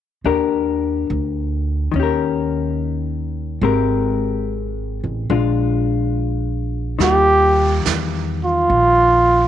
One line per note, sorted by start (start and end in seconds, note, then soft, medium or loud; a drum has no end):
0.24 1.06 D#2 medium
0.24 1.95 D4 soft
0.24 1.95 G4 soft
0.24 1.95 A#4 soft
1.10 1.90 D2 medium
1.92 3.58 D#2 medium
1.92 3.61 D#3 soft
1.96 3.63 C#4 soft
1.96 3.63 G4 soft
2.03 3.63 A#4 soft
3.61 4.99 G#1 medium
3.61 5.29 G#3 soft
3.61 5.30 C4 soft
3.61 5.31 G4 soft
3.61 5.32 A#4 soft
5.04 5.28 A1 medium
5.30 6.95 A#1 medium
5.30 7.00 G#3 soft
5.30 7.00 D4 soft
5.30 7.00 F4 soft
6.99 7.81 D#2 medium
6.99 9.48 D#3 soft
6.99 9.48 G3 soft
6.99 7.82 G4 medium
6.99 brush sweep soft
6.99 snare soft
7.03 9.48 F4 soft
7.85 8.66 E2 medium
7.85 snare soft
7.85 hi-hat pedal soft
8.45 9.48 F4 medium
8.70 9.48 A#1 medium
8.70 brush sweep soft